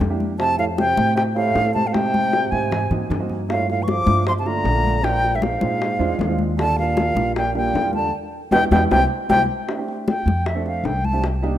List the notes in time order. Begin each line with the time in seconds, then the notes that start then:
0.00 F2, high bongo, low bongo, high conga
0.10 A#3 D4 E4 G4
0.20 high conga
0.39 C3 A3 C4 E4 G4 A5, high bongo, high conga
0.59 A2 F5, high bongo, high conga
0.78 C3 G5, high bongo, high conga
0.96 A2 A3 C4 E4 G4, high bongo, high conga
1.16 C3 G5, high bongo, high conga
1.35 A2 A3 C4 E4 G4 F5, high bongo, high conga
1.55 A2, high bongo, low bongo, high conga
1.65 A3 C4 E4 A4
1.74 C3 A5, high conga
1.87 A2 F5
1.92 C3 A3 C4 D#4 G4 G5, high bongo, high conga
2.14 high bongo, high conga
2.33 high bongo
2.51 G#2 C3 A3 C4 D#4 G4 G#5, high bongo
2.72 high bongo, low conga
2.90 G#2 A#3 C4 D#4 F#4, high bongo, low conga
3.10 G2, high bongo, low bongo, low conga
3.19 A#3 C4 D#4 F#4
3.30 low conga
3.48 A2 A3 A#3 D4 F4 F5, high bongo, high conga
3.68 A2 F5, high bongo, high conga
3.82 E3 C#6
3.88 F3 D6, high bongo, high conga
4.06 G2 A3 A#3 D4 F4, high bongo, high conga
4.26 F3 C6, high bongo, high conga
4.39 C3 A5
4.45 D3 A3 A#3 D4 F4 A#5, high bongo, high conga
4.64 A#1, high bongo, low bongo, high conga
4.74 A3 A#3 D4 F4
4.84 high conga
5.03 A#2 G#3 C4 D4 F4 G5, high bongo, high conga
5.22 high bongo, high conga
5.35 G2 E5
5.42 G#2 F5, high bongo, high conga
5.60 A#2 G#3 C4 D4 F4, high bongo, high conga
5.81 high bongo, high conga
5.99 E2 G#3 C4 D4 F4, high bongo, high conga
6.19 D#2, high bongo, low bongo, high conga
6.28 G#3 C4 D4 F4
6.38 high conga
6.57 D3 G3 A#3 D4 F4 A5, high bongo, high conga
6.78 A#2 F5, high bongo, high conga
6.97 high bongo, high conga
7.15 A#1 G3 A#3 D4 F4, high bongo, high conga
7.36 A#2 G5, high bongo, high conga
7.54 A#2 G3 A#3 D4 G4 G5, high bongo, high conga
7.74 E2, high bongo, low bongo, high conga
7.83 G3 A#3 D4 F4
7.93 D3 A5, high conga
8.51 E2 B2 B3 D4 E4 G5, high bongo, high conga
8.71 E2 B2 B3 D4 E4 G5, high bongo, high conga
8.91 C2 C3 A#3 C4 E4 G5, high bongo, high conga
9.29 C2 C3 A#3 C4 E4 G5, high bongo, high conga
9.68 A3 C4 D4 G4, high bongo, high conga
9.77 A3 C4 D4 G4
9.88 high bongo, high conga
10.08 G5, high bongo, high conga
10.26 F2, high bongo, high conga
10.46 E5, high bongo, high conga
10.55 A3 C4 D4 A4
10.66 F5, high bongo, high conga
10.84 C2 G5, high bongo, low bongo, high conga
11.05 A5, high conga
11.13 A3 C4 D4 G4
11.24 high bongo, high conga
11.42 A#3 D4 D#4 G4, high bongo, high conga